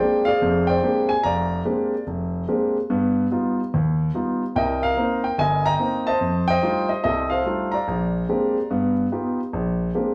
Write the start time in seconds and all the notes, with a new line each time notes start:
Already playing: G#4 C5 D5 G5
0.00 G#3 A#3 C4 D4 G4
0.25 G#4 D5 F5
0.42 F1 F2
0.67 C5 D5 G5
0.83 G#3 A#3 C4 D4 G4
1.09 G#5
1.23 F1 D5 F5 A#5
1.65 G#3 A#3 C4 D4 G4
2.07 F1
2.48 G#3 A#3 C4 D4 G4
2.90 G2 B3
3.31 G3 B3 D#4 F4
3.74 D#2
4.14 G3 B3 D#4 F4
4.56 C2 A#4 D#5 G5
4.83 A#4 F5
4.97 A#3 C4 D#4
5.24 G5
5.38 G1 D#5 G#5
5.66 D#5 G5 A#5
5.79 A#3 C4 D#4
6.07 C5 D#5 A5
6.21 F2
6.48 C5 D#5 G5
6.62 G3 A3 D4 D#4 F4
6.89 D#5
7.04 C2 G4 A4 D#5
7.30 A4 C5 F5
7.46 G3 A3 D4 D#4 F4
7.72 D5 F5 A#5
7.88 A#1
8.29 G#3 A#3 C4 D4 G4
8.70 G2 B3
9.12 B3 D#4 F4 G4
9.53 A#1
9.95 G#3 A#3 C4 D4 G4